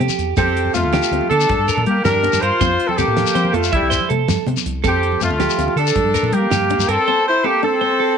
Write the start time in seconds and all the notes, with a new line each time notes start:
0.00 C3 C4 G4, closed hi-hat
0.09 low conga, shekere
0.18 E2, closed hi-hat, shekere
0.37 F2 C4 G4 A4, kick, closed hi-hat, high conga, low conga, shekere
0.47 low conga
0.56 closed hi-hat, low conga
0.65 low conga
0.73 F2 A3 C4 F4, closed hi-hat, shekere
0.83 D2, high conga, low conga
0.93 D4 G4, snare, closed hi-hat, low conga, shekere
1.03 shekere
1.11 D2 C4, closed hi-hat
1.21 low conga
1.29 D3 D4 A4, closed hi-hat, high conga, low conga
1.41 shekere
1.49 G2, kick, closed hi-hat, low conga
1.58 G2
1.68 A#4, closed hi-hat, shekere
1.77 A#2, high conga, low conga
1.86 G3 A#3 G4, closed hi-hat
2.04 G2 D4 G4 A#4, snare, closed hi-hat, low conga, shekere
2.15 low conga
2.23 D4, closed hi-hat, high conga
2.33 G2, low conga, shekere
2.40 G2 F4 A#4 C5, closed hi-hat
2.52 low conga
2.61 F2 C4 C5, kick, closed hi-hat, high conga, low conga, shekere
2.71 low conga
2.80 closed hi-hat
2.87 C4 A4, low conga
2.98 D2 A#3 C4 G4 A4, closed hi-hat, shekere
3.08 A2, high conga, low conga
3.17 D4, snare, closed hi-hat, low conga, shekere
3.27 shekere
3.35 F3 C4 C5, closed hi-hat, shekere
3.45 low conga
3.53 F2 A3 F4 A4, closed hi-hat, high conga, low conga
3.63 shekere
3.72 C2 G3 E4 E5, kick, closed hi-hat, low conga
3.82 C2
3.90 C5, snare, closed hi-hat, shekere
4.00 low conga
4.09 C3 A#3 A4, closed hi-hat
4.28 G2, snare, closed hi-hat, low conga, shekere
4.38 low conga
4.47 C3 C4, closed hi-hat, high conga
4.56 low conga, shekere
4.66 C2, closed hi-hat
4.84 F2 C4 G4 A4, kick, closed hi-hat, high conga, low conga, shekere
4.94 low conga
5.03 closed hi-hat, low conga
5.12 low conga
5.21 F2 A3 C4 F4, closed hi-hat, shekere
5.31 D2, high conga, low conga
5.39 D4 G4, snare, closed hi-hat, low conga, shekere
5.50 shekere
5.58 D2 C4, closed hi-hat, shekere
5.68 low conga
5.76 D3 D4 A4, closed hi-hat, low conga
5.87 shekere
5.95 G2, kick, closed hi-hat, low conga
6.04 G2
6.14 A#4, closed hi-hat, shekere
6.23 A#2, high conga, low conga
6.32 G3 A#3 G4, closed hi-hat
6.51 G2 G4, snare, closed hi-hat, low conga, shekere
6.61 low conga
6.70 D4, closed hi-hat, high conga
6.78 G2, low conga, shekere
6.88 G2 C4 A4 A#4, closed hi-hat
6.98 low conga
7.08 C4 C5
7.27 E4 C5
7.44 A#3 C4 G4 A4
7.63 C4 D4 A4
7.81 C4 C5
8.00 A4